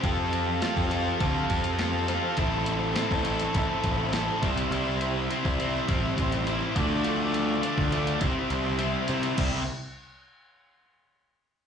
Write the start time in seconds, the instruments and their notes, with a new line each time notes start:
Already playing: tonewheel organ G4
0.02 picked electric bass F2, overdriven electric guitar F3 C4 F4 A4, tonewheel organ C5 F5 A5, kick, closed hi-hat
0.33 closed hi-hat
0.62 overdriven electric guitar F3 C4 F4 A4, snare, closed hi-hat
0.77 picked electric bass F2, kick
0.91 overdriven electric guitar F3 C4 F4 A4, closed hi-hat
1.20 picked electric bass D2, overdriven electric guitar F3 C4 F4 A4, kick, closed hi-hat
1.50 picked electric bass F2, kick, closed hi-hat
1.64 closed hi-hat
1.79 overdriven electric guitar F3 C4 F4 A4, snare, closed hi-hat
2.08 overdriven electric guitar F3 C4 F4 A4, snare, closed hi-hat
2.37 picked electric bass A1, overdriven electric guitar C4 E4 A4, tonewheel organ A4 E5 B5, kick, closed hi-hat
2.66 closed hi-hat
2.96 overdriven electric guitar C4 E4 A4, snare, closed hi-hat
3.11 picked electric bass A1, kick
3.25 overdriven electric guitar C4 E4 A4, closed hi-hat
3.40 closed hi-hat
3.55 picked electric bass A1, overdriven electric guitar C4 E4 A4, kick, closed hi-hat
3.84 picked electric bass A1, kick, closed hi-hat
4.13 overdriven electric guitar C4 E4 A4, snare, closed hi-hat
4.41 picked electric bass C2, overdriven electric guitar G3 C4 E4, tonewheel organ G4 C6, kick, snare, closed hi-hat
4.58 closed hi-hat
4.71 picked electric bass C2, overdriven electric guitar G3 C4 E4, closed hi-hat
5.01 closed hi-hat
5.31 overdriven electric guitar G3 C4 E4, closed hi-hat
5.45 picked electric bass C2, kick
5.59 overdriven electric guitar G3 C4 E4, closed hi-hat
5.88 picked electric bass A1, overdriven electric guitar G3 C4 E4, kick, closed hi-hat
6.18 picked electric bass A1, kick, closed hi-hat
6.32 closed hi-hat
6.47 overdriven electric guitar G3 C4 E4, closed hi-hat
6.75 picked electric bass D2, overdriven electric guitar F3 A3 D4, tonewheel organ A4 D5 F5 D6, kick, closed hi-hat
7.04 overdriven electric guitar F3 A3 D4, closed hi-hat
7.34 closed hi-hat
7.62 overdriven electric guitar F3 A3 D4, closed hi-hat
7.78 picked electric bass D2, kick
7.92 overdriven electric guitar F3 A3 D4, closed hi-hat
8.07 closed hi-hat
8.20 picked electric bass C2, overdriven electric guitar G3 C4 E4, tonewheel organ G4 C5 E5 C6, kick, closed hi-hat
8.50 picked electric bass C2, closed hi-hat
8.79 overdriven electric guitar G3 C4 E4, closed hi-hat
9.08 picked electric bass C3, overdriven electric guitar G3 C4 E4, closed hi-hat
9.23 closed hi-hat
9.37 picked electric bass C2, tonewheel organ C3 C4 E5 G5, overdriven electric guitar G3 C4 E4, kick, crash